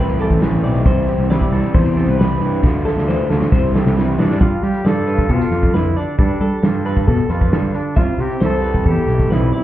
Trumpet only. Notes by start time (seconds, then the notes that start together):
4.19 D4
4.40 F4
4.63 G4
4.86 A4
5.32 F4
5.76 E4
5.97 D4
6.19 D4
7.74 D4
7.98 F4
8.21 G4
8.45 A4
8.89 G4
9.33 E4
9.54 E4